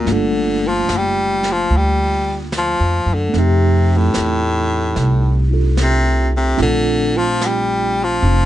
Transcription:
0.00 0.14 A#2 medium
0.04 0.85 G1 medium
0.04 3.27 A3 soft
0.04 3.34 A#3 soft
0.04 3.34 D4 soft
0.04 brush sweep soft
0.04 snare soft
0.09 0.70 D3 medium
0.09 3.36 F4 soft
0.68 0.99 F3 medium
0.89 1.67 F#1 medium
0.89 snare soft
0.89 hi-hat pedal soft
0.97 1.54 G3 medium
1.43 snare soft
1.52 1.79 F3 medium
1.70 2.75 D2 medium
1.70 brush sweep soft
1.77 2.39 G3 medium
2.52 snare soft
2.52 hi-hat pedal medium
2.58 3.16 F3 medium
2.80 3.05 F2 medium
3.06 3.31 F#2 medium
3.14 3.40 D3 medium
3.29 6.56 A3 soft
3.29 6.56 C4 soft
3.34 4.11 F2 medium
3.34 6.60 D#4 soft
3.34 brush sweep soft
3.34 snare soft
3.38 3.99 C3 medium
3.38 6.62 G4 soft
3.97 5.56 A2 medium
4.14 4.93 E2 medium
4.14 snare soft
4.14 hi-hat pedal medium
4.96 6.54 C2 medium
4.96 brush sweep soft
4.96 snare soft
5.50 6.56 D4 soft
5.50 6.58 F4 soft
5.50 6.60 A4 soft
5.77 6.31 C3 medium
5.77 snare soft
5.77 hi-hat pedal soft
6.36 6.59 C3 medium
6.57 8.18 A#1 medium
6.57 8.45 A3 soft
6.57 8.21 C4 soft
6.57 8.23 D4 soft
6.57 8.45 F4 medium
6.57 brush sweep soft
6.57 snare soft
6.62 7.19 D3 medium
7.18 7.47 F3 medium
7.41 snare soft
7.41 hi-hat pedal medium
7.46 8.05 G3 medium
8.04 8.45 F3 loud
8.22 8.45 F1 medium
8.22 8.45 C4 soft
8.22 8.45 D4 soft

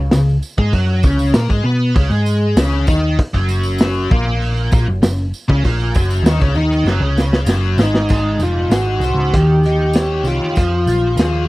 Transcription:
0.00 0.11 C#2 medium
0.00 0.10 C#3 medium
0.11 0.40 C#2 medium
0.11 0.36 C#3 medium
0.11 snare loud
0.11 open hi-hat medium
0.11 tambourine medium
0.29 tambourine soft
0.43 tambourine medium
0.58 0.72 G#2 medium
0.58 0.72 G#3 medium
0.58 0.73 G#4 loud
0.58 kick loud
0.73 1.02 F#2 loud
0.73 1.03 F#3 medium
0.73 1.03 F#4 loud
0.73 kick medium
0.73 open hi-hat medium
1.03 1.32 C#2 medium
1.03 1.34 C#3 loud
1.03 1.34 C#4 loud
1.03 kick loud
1.03 tambourine medium
1.19 tambourine medium
1.34 1.49 A#2 medium
1.34 1.49 A#3 medium
1.34 1.49 A#4 loud
1.34 snare loud
1.34 open hi-hat medium
1.34 tambourine medium
1.49 1.63 G#2 loud
1.49 1.64 G#3 medium
1.49 1.64 G#4 loud
1.49 kick loud
1.49 tambourine soft
1.64 1.93 B2 loud
1.64 1.95 B3 medium
1.64 1.95 B4 medium
1.94 2.09 C#2 loud
1.94 2.10 C#3 loud
1.94 2.10 C#4 medium
1.94 kick loud
1.94 open hi-hat medium
2.10 2.53 G#2 medium
2.10 2.56 G#3 medium
2.10 2.56 G#4 loud
2.10 tambourine soft
2.26 tambourine medium
2.56 2.85 C#2 loud
2.56 2.87 C#3 loud
2.56 2.87 C#4 loud
2.56 snare loud
2.56 open hi-hat medium
2.56 tambourine medium
2.72 tambourine soft
2.87 3.16 D#2 loud
2.87 3.17 D#3 loud
2.87 3.18 D#4 loud
2.87 kick loud
2.87 tambourine medium
3.19 kick loud
3.19 open hi-hat medium
3.34 4.07 F#1 medium
3.34 4.09 F#2 medium
3.34 4.10 F#3 loud
3.34 kick medium
3.49 tambourine medium
3.63 tambourine medium
3.78 snare loud
3.78 open hi-hat medium
3.78 tambourine medium
3.93 tambourine soft
4.10 4.68 A#1 loud
4.10 4.71 A#2 medium
4.10 4.71 A#3 loud
4.10 kick loud
4.42 open hi-hat medium
4.57 tambourine soft
4.72 4.86 A#1 medium
4.72 4.86 A#2 medium
4.72 4.87 A#3 loud
4.72 kick loud
4.72 tambourine medium
4.88 5.02 F#1 medium
4.88 5.01 F#2 medium
5.02 5.31 F#1 medium
5.02 5.27 F#2 medium
5.02 snare loud
5.02 open hi-hat medium
5.02 tambourine medium
5.18 tambourine soft
5.34 tambourine medium
5.48 5.63 C#2 medium
5.48 5.63 C#3 medium
5.48 5.63 C#4 loud
5.48 kick loud
5.64 5.93 A#1 loud
5.64 5.94 A#2 loud
5.64 5.94 A#3 loud
5.64 kick medium
5.64 open hi-hat medium
5.64 tambourine soft
5.80 tambourine soft
5.94 6.22 F#1 loud
5.94 6.24 F#2 loud
5.94 6.25 F#3 medium
5.94 kick loud
5.94 tambourine medium
6.10 tambourine medium
6.22 6.38 D#2 loud
6.22 6.40 D#3 loud
6.22 tambourine medium
6.26 6.40 D#4 loud
6.26 snare loud
6.26 open hi-hat medium
6.40 6.54 C#2 medium
6.40 6.55 C#3 medium
6.40 6.55 C#4 loud
6.40 kick loud
6.40 tambourine soft
6.55 6.83 D#2 medium
6.55 6.85 D#3 medium
6.55 6.86 D#4 loud
6.55 tambourine soft
6.72 tambourine soft
6.84 6.99 F#1 medium
6.84 7.01 F#2 loud
6.84 7.01 F#3 loud
6.84 snare medium
6.84 tambourine soft
7.00 7.44 C#2 medium
7.00 7.47 C#3 medium
7.00 7.47 C#4 loud
7.17 snare medium
7.17 tambourine medium
7.33 snare medium
7.33 tambourine soft
7.46 7.76 F#1 loud
7.46 7.78 F#2 medium
7.46 7.79 F#3 loud
7.46 snare medium
7.46 tambourine loud
7.63 tambourine soft
7.77 8.07 G#1 medium
7.77 8.09 G#2 medium
7.77 8.09 G#3 loud
7.77 snare loud
7.77 tambourine medium
7.83 8.44 D#4 medium
7.94 snare medium
7.94 tambourine soft
8.09 8.39 G#1 medium
8.09 9.33 G#3 medium
8.09 kick loud
8.09 crash medium
8.09 tambourine medium
8.39 8.69 F1 medium
8.39 9.33 D#4 medium
8.39 8.73 F4 medium
8.39 closed hi-hat medium
8.39 tambourine medium
8.70 8.99 G#1 medium
8.70 9.35 F#4 medium
8.70 9.33 G#4 medium
8.70 snare loud
8.70 closed hi-hat medium
8.70 tambourine loud
9.00 9.14 C2 medium
9.00 closed hi-hat medium
9.00 tambourine medium
9.04 9.34 C5 medium
9.14 9.30 C#2 medium
9.33 10.21 D#2 medium
9.33 10.57 D#3 medium
9.33 10.28 G4 medium
9.33 kick loud
9.33 closed hi-hat medium
9.33 tambourine soft
9.63 10.57 D#4 medium
9.63 closed hi-hat medium
9.63 tambourine soft
9.93 10.57 C#5 medium
9.93 snare loud
9.93 closed hi-hat medium
9.93 tambourine medium
10.24 10.39 C2 medium
10.24 11.45 F4 medium
10.24 10.57 G4 medium
10.24 closed hi-hat medium
10.24 tambourine medium
10.56 10.86 F2 medium
10.56 11.48 F3 medium
10.56 kick loud
10.56 closed hi-hat medium
10.56 tambourine medium
10.86 11.15 A#1 medium
10.86 11.48 F4 medium
10.86 closed hi-hat medium
10.86 tambourine medium
11.17 11.46 D#2 medium
11.17 11.48 G#4 medium
11.17 snare loud
11.17 closed hi-hat medium
11.17 tambourine medium

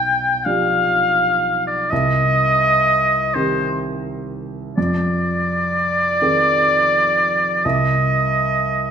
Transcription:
0.00 0.41 B1 medium
0.00 0.46 G5 loud
0.45 1.87 F3 soft
0.45 1.88 D4 soft
0.45 1.88 G4 soft
0.45 1.66 F5 loud
1.67 1.91 D5 medium
1.90 3.31 C2 medium
1.90 3.35 D#5 loud
3.34 4.73 D#3 soft
3.34 4.73 C4 soft
3.34 4.74 G4 soft
3.34 3.82 C5 medium
4.77 6.17 F2 medium
4.77 7.66 D5 loud
6.22 7.60 D#3 soft
6.22 7.61 C4 soft
6.22 7.61 G#4 soft
7.65 8.91 C2 medium
7.65 8.91 D#5 medium

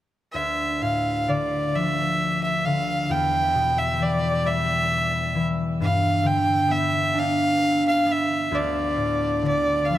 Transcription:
0.33 3.15 D2 soft
0.33 0.84 E5 medium
0.82 1.33 A2 soft
0.82 1.30 F5 medium
1.28 2.65 D3 soft
1.28 1.77 D5 medium
1.75 2.70 F3 soft
1.75 2.43 E5 medium
2.44 2.67 E5 medium
2.66 3.15 D3 soft
2.66 3.13 F5 medium
3.10 5.83 E2 medium
3.10 3.80 G5 medium
3.55 5.83 B2 soft
3.79 4.04 E5 medium
3.99 5.34 E3 soft
3.99 4.48 D5 medium
4.45 5.83 G3 soft
4.45 5.46 E5 medium
5.35 5.83 E3 soft
5.80 8.56 G2 medium
5.80 6.28 F5 medium
6.23 8.56 D3 soft
6.23 6.73 G5 medium
6.68 8.05 B3 soft
6.68 7.20 E5 medium
7.14 9.94 D4 soft
7.19 7.85 F5 medium
7.88 8.13 F5 medium
8.06 9.98 B3 soft
8.11 8.56 E5 medium
8.51 9.98 D2 medium
8.51 9.45 D5 medium
8.96 9.48 A2 soft
9.42 9.98 D3 soft
9.47 9.87 D5 medium
9.85 9.97 F5 soft
9.90 9.98 F3 soft

